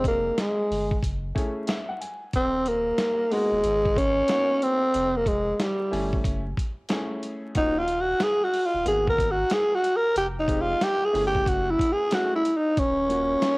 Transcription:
0.00 0.31 F1 medium
0.00 0.69 G#3 medium
0.00 0.66 C4 medium
0.00 0.66 D#4 medium
0.00 0.66 G4 medium
0.04 0.42 A#3 medium
0.04 kick medium
0.04 closed hi-hat medium
0.38 1.04 G#3 medium
0.38 snare loud
0.38 closed hi-hat medium
0.71 1.00 G1 medium
0.71 open hi-hat soft
0.91 kick loud
1.03 1.32 F#1 medium
1.03 kick medium
1.03 closed hi-hat loud
1.35 1.76 A3 medium
1.35 1.76 C#4 medium
1.35 1.77 E4 medium
1.35 1.77 G#4 medium
1.35 kick medium
1.35 closed hi-hat medium
1.67 1.87 E5 medium
1.67 snare loud
1.67 closed hi-hat medium
1.89 2.00 F#5 medium
2.01 2.31 G#5 medium
2.01 closed hi-hat medium
2.33 2.91 D#1 loud
2.33 2.70 C4 medium
2.33 kick loud
2.33 closed hi-hat medium
2.66 3.34 A#3 loud
2.66 closed hi-hat medium
2.98 snare loud
2.98 closed hi-hat medium
3.31 3.99 G#3 loud
3.31 3.56 A#3 medium
3.31 3.57 B3 medium
3.31 3.57 D#4 medium
3.31 3.57 F#4 medium
3.31 open hi-hat soft
3.52 3.63 D#1 medium
3.64 4.22 G#1 loud
3.64 closed hi-hat medium
3.85 kick medium
3.96 4.64 C#4 loud
3.96 kick medium
3.96 closed hi-hat medium
4.28 4.78 A#3 medium
4.28 4.78 B3 medium
4.28 4.78 D#4 medium
4.28 4.78 F#4 medium
4.28 snare loud
4.28 closed hi-hat loud
4.62 5.18 C4 loud
4.62 closed hi-hat medium
4.94 5.53 F1 medium
4.94 closed hi-hat medium
5.17 5.30 A#3 medium
5.26 5.56 G#3 loud
5.26 kick medium
5.26 closed hi-hat medium
5.56 5.63 G#3 medium
5.56 snare loud
5.56 closed hi-hat medium
5.61 6.26 G3 medium
5.91 6.21 G1 medium
5.91 6.41 A3 medium
5.91 6.41 C#4 medium
5.91 6.41 E4 medium
5.91 6.42 G#5 medium
5.91 open hi-hat soft
6.13 kick medium
6.24 6.53 F#1 loud
6.24 kick loud
6.24 closed hi-hat medium
6.57 kick medium
6.57 closed hi-hat medium
6.89 7.55 A3 medium
6.89 7.54 C#4 medium
6.89 7.55 E4 medium
6.89 7.56 G#4 medium
6.89 snare loud
6.89 closed hi-hat medium
7.23 closed hi-hat medium
7.55 8.13 D#1 medium
7.55 7.80 A#3 medium
7.55 7.81 C#4 medium
7.55 7.81 D#4 loud
7.55 7.81 F4 medium
7.55 7.81 F#4 medium
7.55 kick loud
7.55 closed hi-hat medium
7.79 8.03 F4 medium
7.88 closed hi-hat medium
8.01 8.25 F#4 loud
8.20 8.46 G#4 loud
8.20 snare loud
8.20 closed hi-hat medium
8.44 8.67 F#4 medium
8.54 open hi-hat soft
8.66 8.87 F4 loud
8.74 8.85 D#1 medium
8.85 9.44 G#1 loud
8.85 9.26 A#3 medium
8.85 9.27 B3 medium
8.85 9.27 D#4 medium
8.85 9.27 F#4 medium
8.85 9.07 G#4 medium
8.85 closed hi-hat medium
9.07 9.33 A#4 loud
9.07 kick medium
9.18 kick medium
9.18 closed hi-hat medium
9.31 9.55 F#4 medium
9.50 9.76 G#4 loud
9.50 snare loud
9.50 closed hi-hat medium
9.75 9.98 F#4 medium
9.84 closed hi-hat medium
9.96 10.17 A#4 loud
10.16 10.74 F1 loud
10.16 10.27 G4 loud
10.16 closed hi-hat loud
10.40 10.63 D#4 medium
10.48 10.74 G#3 medium
10.48 10.74 C4 medium
10.48 10.74 D#4 medium
10.48 10.75 G4 medium
10.48 kick medium
10.48 closed hi-hat medium
10.62 10.85 F4 loud
10.81 11.06 G4 loud
10.81 snare loud
10.81 closed hi-hat medium
11.05 11.26 G#4 medium
11.13 11.43 G1 medium
11.13 12.07 A3 medium
11.13 12.07 C#4 medium
11.13 12.07 E4 medium
11.13 12.07 G#4 medium
11.13 open hi-hat medium
11.27 11.50 G4 loud
11.35 kick medium
11.46 11.75 F#1 loud
11.46 11.69 F#4 medium
11.46 kick medium
11.46 closed hi-hat medium
11.71 11.94 E4 medium
11.79 kick medium
11.79 closed hi-hat medium
11.92 12.15 G#4 medium
12.11 12.37 A3 medium
12.11 12.37 C#4 medium
12.11 12.37 E4 medium
12.11 12.35 F#4 medium
12.11 12.38 G#4 medium
12.11 snare loud
12.11 closed hi-hat medium
12.36 12.58 E4 medium
12.45 closed hi-hat medium
12.57 12.80 D#4 medium
12.77 13.35 D#1 medium
12.77 13.58 C#4 loud
12.77 kick loud
12.77 closed hi-hat medium
13.09 13.50 A#3 medium
13.09 13.50 C#4 medium
13.09 13.51 F4 medium
13.09 13.51 F#4 medium
13.09 closed hi-hat medium
13.42 snare loud
13.42 closed hi-hat medium

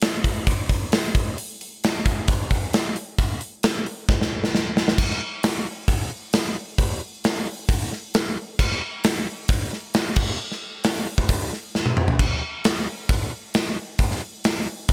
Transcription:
0.02 snare loud
0.02 open hi-hat medium
0.24 kick medium
0.24 open hi-hat medium
0.47 kick loud
0.47 open hi-hat medium
0.69 kick medium
0.69 open hi-hat medium
0.92 snare loud
0.92 open hi-hat medium
1.15 kick loud
1.15 open hi-hat medium
1.38 open hi-hat medium
1.61 open hi-hat medium
1.84 snare loud
1.84 open hi-hat medium
2.06 kick medium
2.06 open hi-hat medium
2.28 kick loud
2.28 open hi-hat medium
2.51 kick medium
2.51 open hi-hat soft
2.73 snare loud
2.73 open hi-hat medium
2.96 open hi-hat soft
3.19 kick loud
3.19 open hi-hat medium
3.41 open hi-hat medium
3.63 snare loud
3.63 open hi-hat medium
3.86 open hi-hat medium
4.09 kick loud
4.09 snare medium
4.21 snare medium
4.44 snare medium
4.55 snare medium
4.77 snare medium
4.88 snare medium
4.98 kick loud
4.98 crash loud
5.11 snare soft
5.43 snare loud
5.43 open hi-hat medium
5.88 kick loud
5.88 open hi-hat medium
6.33 snare loud
6.33 open hi-hat medium
6.78 kick loud
6.78 open hi-hat medium
7.24 snare loud
7.24 open hi-hat medium
7.69 kick loud
7.69 open hi-hat medium
7.92 snare soft
8.14 snare loud
8.14 open hi-hat medium
8.59 kick loud
8.59 crash medium
8.72 snare soft
9.04 snare loud
9.04 open hi-hat medium
9.48 kick loud
9.48 open hi-hat medium
9.73 snare soft
9.94 snare loud
9.94 open hi-hat medium
10.16 kick loud
10.16 crash medium
10.52 snare soft
10.84 snare loud
10.84 open hi-hat medium
11.18 kick medium
11.29 kick loud
11.29 open hi-hat medium
11.53 snare soft
11.75 snare medium
11.86 high tom medium
11.97 mid tom medium
12.08 floor tom loud
12.19 kick loud
12.19 crash medium
12.64 snare loud
12.64 open hi-hat medium
13.09 kick loud
13.09 open hi-hat medium
13.54 snare loud
13.54 open hi-hat medium
13.99 kick loud
13.99 open hi-hat medium
14.11 snare soft
14.44 snare loud
14.44 open hi-hat medium
14.88 kick loud
14.88 open hi-hat medium

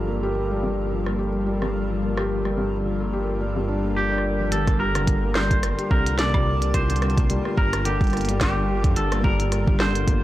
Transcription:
0.00 4.50 G1 medium
0.00 0.63 G2 medium
0.00 0.91 F3 medium
0.00 0.51 G3 medium
0.00 4.48 G3 medium
0.00 0.07 A#3 medium
0.00 4.48 F4 medium
0.00 0.23 G4 loud
0.00 4.48 A4 medium
0.00 4.48 A#4 medium
0.07 0.21 A#3 medium
0.23 0.30 G4 loud
0.51 0.62 G3 medium
0.63 0.78 G2 medium
0.91 0.99 F3 medium
1.06 1.17 A#3 medium
1.06 cross-stick medium
1.19 1.27 G4 medium
1.47 1.60 G3 medium
1.62 1.74 G2 medium
1.62 cross-stick soft
1.90 1.96 F3 medium
2.02 2.16 A#3 medium
2.17 2.24 G4 medium
2.17 cross-stick medium
2.45 2.56 G3 loud
2.45 cross-stick soft
2.57 2.72 G2 loud
2.85 2.94 F3 medium
3.01 3.12 A#3 medium
3.13 3.21 G4 medium
3.41 3.55 G3 medium
3.56 3.68 G2 medium
3.68 3.82 D4 medium
3.84 3.95 A#3 medium
3.96 4.10 G4 medium
3.96 4.52 G4 medium
4.12 4.24 D4 medium
4.18 cross-stick soft
4.40 4.46 F3 medium
4.52 5.73 G1 loud
4.52 4.60 G3 medium
4.52 10.24 G3 medium
4.52 10.24 F4 medium
4.52 4.79 A4 loud
4.52 10.24 A#4 medium
4.52 8.92 A5 medium
4.52 closed hi-hat medium
4.67 kick loud
4.67 cross-stick medium
4.67 closed hi-hat soft
4.80 4.94 G4 medium
4.80 5.35 A#4 loud
4.95 5.06 D3 medium
4.95 cross-stick medium
4.95 closed hi-hat medium
5.07 kick loud
5.07 closed hi-hat medium
5.23 5.34 A#3 medium
5.35 5.49 G3 loud
5.35 5.90 C5 loud
5.35 cross-stick medium
5.35 snare loud
5.51 5.57 G3 medium
5.51 kick loud
5.51 closed hi-hat medium
5.63 cross-stick medium
5.63 closed hi-hat medium
5.79 5.90 G4 medium
5.79 closed hi-hat soft
5.91 7.39 C2 medium
5.91 6.05 D3 medium
5.91 6.18 A#4 loud
5.91 kick loud
6.06 closed hi-hat medium
6.19 6.33 A#3 medium
6.19 6.74 D5 loud
6.19 snare loud
6.19 closed hi-hat medium
6.34 6.45 G3 loud
6.34 kick loud
6.34 cross-stick medium
6.46 6.55 G3 medium
6.62 closed hi-hat medium
6.74 6.88 G4 medium
6.74 7.57 C5 loud
6.74 kick loud
6.74 cross-stick medium
6.74 closed hi-hat medium
6.90 7.01 D3 medium
6.90 closed hi-hat soft
6.96 closed hi-hat soft
7.02 cross-stick medium
7.02 closed hi-hat soft
7.10 closed hi-hat soft
7.17 7.28 A#3 medium
7.17 kick loud
7.17 closed hi-hat medium
7.30 7.44 G3 loud
7.30 closed hi-hat medium
7.45 7.52 G3 medium
7.45 cross-stick medium
7.58 8.86 G1 loud
7.58 7.86 A#4 loud
7.58 kick loud
7.73 7.84 G4 medium
7.73 cross-stick medium
7.73 closed hi-hat medium
7.85 7.99 D3 medium
7.85 8.40 G4 medium
7.85 closed hi-hat medium
8.01 kick loud
8.01 closed hi-hat soft
8.04 closed hi-hat soft
8.07 closed hi-hat soft
8.10 cross-stick medium
8.10 closed hi-hat soft
8.13 8.27 A#3 medium
8.13 closed hi-hat soft
8.17 closed hi-hat soft
8.21 closed hi-hat soft
8.25 8.39 G3 loud
8.25 closed hi-hat soft
8.29 closed hi-hat medium
8.41 8.98 G4 loud
8.41 kick loud
8.41 cross-stick medium
8.41 snare loud
8.41 closed hi-hat medium
8.69 8.83 G4 medium
8.84 8.93 G2 medium
8.84 8.95 D3 medium
8.84 kick loud
8.84 closed hi-hat medium
8.96 10.17 G1 loud
8.96 10.24 G4 medium
8.96 9.24 A4 medium
8.96 closed hi-hat medium
9.12 9.23 A#3 medium
9.12 cross-stick medium
9.12 closed hi-hat soft
9.24 9.38 G3 loud
9.24 9.79 A#4 loud
9.24 kick loud
9.40 9.46 G3 medium
9.40 closed hi-hat medium
9.52 cross-stick medium
9.52 closed hi-hat medium
9.68 9.79 G4 medium
9.68 kick loud
9.80 9.94 D3 medium
9.80 10.24 C5 loud
9.80 cross-stick medium
9.80 snare loud
9.95 closed hi-hat medium
10.08 10.22 A#3 medium
10.08 kick loud
10.08 closed hi-hat medium

